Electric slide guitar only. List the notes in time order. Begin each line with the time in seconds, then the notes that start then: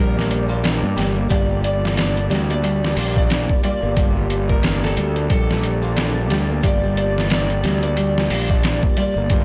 0.00 A#4
1.31 D5
1.65 D5
1.97 D5
2.51 D5
3.18 D5
3.65 D5
4.50 A#4
4.84 A4
5.31 A4
6.65 D5
6.98 D5
7.31 D5
7.83 D5
8.51 D5
8.98 D5